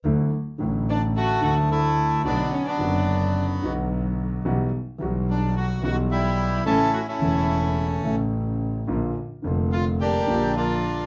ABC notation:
X:1
M:4/4
L:1/16
Q:1/4=109
K:D
V:1 name="Violin"
z6 D2 F2 F2 E4 | D2 C D6 z6 z | z6 D2 F2 F2 E4 | A2 F E6 z6 z |
z6 =F2 G4 F4 |]
V:2 name="Bandoneon"
z6 D2 F2 F2 E4 | D2 C D6 z6 z | z6 D2 F2 F2 E4 | A2 F E6 z6 z |
z6 =F2 G4 F4 |]
V:3 name="Bandoneon"
z8 A,4 A,4 | [F,B,]3 [F,B,]8 z4 z | z12 G,4 | [CE]3 [A,C]8 z4 z |
z8 [_B,D]4 [B,D]4 |]
V:4 name="Grand piano" clef=bass
[D,,D,F,A,E]2 z2 [A,,,A,,D,F,A,E]6 [D,,D,F,A,E]6 | [B,,,B,,D,F,B,F]2 z2 [F,,,F,,D,F,B,F]6 [B,,,B,,D,F,B,F]6 | [B,,,B,,E,G,B,F]2 z2 [B,,,B,,E,G,B,F]6 [B,,,B,,E,G,B,F]6 | [A,,,A,,C,E,A,E]2 z2 [E,,,E,,C,E,A,E]6 [A,,,A,,C,E,A,E]6 |
[_B,,,_B,,D,=F,_B,=F]2 z2 [=F,,,=F,,D,F,B,F]6 [B,,,B,,D,F,B,F]6 |]
V:5 name="Double bass" clef=bass
D,,2 z2 A,,,6 D,,6 | B,,,2 z2 F,,,6 B,,,6 | B,,,2 z2 B,,,6 B,,,6 | A,,,2 z2 E,,,6 A,,,6 |
_B,,,2 z2 =F,,,6 B,,,6 |]